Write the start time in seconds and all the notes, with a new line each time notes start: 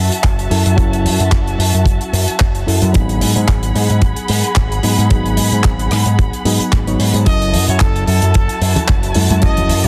Already playing: F#3 C#4 E4 F#4 A4 E5 A5
0.12 closed hi-hat
0.24 F#1, kick, clap, closed hi-hat
0.39 closed hi-hat
0.50 F#2 F#3 C#4 E4 A4, open hi-hat
0.66 F#2, closed hi-hat
0.76 F#1 F#3 C#4 E4 A4, kick, closed hi-hat
0.93 closed hi-hat
1.05 F#2, open hi-hat
1.20 F#2, closed hi-hat
1.32 F#1, kick, clap, closed hi-hat
1.47 closed hi-hat
1.59 F#2, open hi-hat
1.74 F#2, closed hi-hat
1.85 F#1, kick, closed hi-hat
2.01 closed hi-hat
2.13 F#2, open hi-hat
2.28 muted picked electric bass stroke, closed hi-hat
2.39 F#1, kick, clap, closed hi-hat
2.55 closed hi-hat
2.66 F#2 F#3 C#4 E4 A4, open hi-hat
2.82 F#2, closed hi-hat
2.93 G#1 F#3 B3 D#4 G#4 F#5 B5, kick, closed hi-hat
3.09 closed hi-hat
3.21 G#2, open hi-hat
3.35 G#2, closed hi-hat
3.48 G#1, kick, clap, closed hi-hat
3.63 closed hi-hat
3.75 G#2, open hi-hat
3.90 G#2, closed hi-hat
4.02 G#1, kick, closed hi-hat
4.16 closed hi-hat
4.28 G#2, open hi-hat
4.44 closed hi-hat
4.56 G#1, kick, clap, closed hi-hat
4.72 closed hi-hat
4.83 G#2 F#3 B3 D#4 G#4, open hi-hat
4.98 G#2, closed hi-hat
5.10 G#1 F#3 B3 D#4 G#4, kick, closed hi-hat
5.26 closed hi-hat
5.37 G#2, open hi-hat
5.52 G#2, closed hi-hat
5.64 G#1, kick, clap, closed hi-hat
5.79 closed hi-hat
5.91 G#2, cross-stick, open hi-hat
6.06 G#2, closed hi-hat
6.19 G#1, kick, closed hi-hat
6.33 closed hi-hat
6.45 G#2 F#3 B3 D#4 G#4, open hi-hat
6.60 muted picked electric bass stroke, closed hi-hat
6.72 G#1, kick, clap, closed hi-hat
6.87 F#3 B3 D#4 C#5, closed hi-hat
6.99 G#2, open hi-hat
7.14 G#2, closed hi-hat
7.26 F#1 F#3 C#4 E4 F#4 A4 D#5 A5, kick, closed hi-hat
7.42 closed hi-hat
7.53 F#2, open hi-hat
7.68 F#2 C#5, closed hi-hat
7.79 F#1 A4, kick, clap, closed hi-hat
7.96 closed hi-hat
8.06 F#2 A4, open hi-hat
8.22 F#2, closed hi-hat
8.34 F#1, kick, closed hi-hat
8.49 closed hi-hat
8.61 F#2, open hi-hat
8.76 closed hi-hat, low conga
8.88 F#1, kick, clap, closed hi-hat
9.03 closed hi-hat
9.14 F#2 F#3 C#4 E4 A4, open hi-hat, high conga
9.30 F#2, closed hi-hat, high conga
9.41 F#1 F#3 C#4 E4 A4 D#5, kick, closed hi-hat
9.57 closed hi-hat, low conga
9.69 F#2, open hi-hat
9.84 F#2 C#5, closed hi-hat